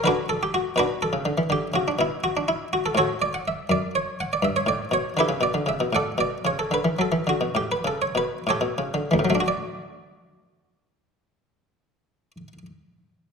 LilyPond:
<<
  \new Staff \with { instrumentName = "Harpsichord" } { \time 12/8 \key d \major \tempo 4. = 77 <d' fis' b'>8 a'16 g'16 fis'8 <d' fis' b'>8 a'4 g'8 fis'16 d'16 e'8 fis'16 d'16 e'8 fis'16 a'16 | <fis' a' cis''>8 d''16 fis''16 e''8 d''8 cis''8 fis''16 d''16 e''16 cis''16 d''8 cis''8 <e' g' b'>8 d''8 e''8 | <a' d'' fis''>8 d''8 cis''16 a'16 b'8 a'8 fis'8 g'16 b'16 a'16 cis''16 b'8 <g' a' cis''>4. | <d, a, fis a d' fis' d''>1. | }
  \new Staff \with { instrumentName = "Harpsichord" } { \clef bass \time 12/8 \key d \major d4. b,8. cis16 d16 e16 d8 cis8 b,2 | a,4. fis,4. g,8 a,8 b,8 d16 cis16 b,16 d16 cis16 b,16 | a,8 b,8 cis8 d16 e16 fis16 e16 d16 b,16 a,8 cis8 b,8 a,16 b,16 cis16 d16 e16 fis16 | r1. | }
>>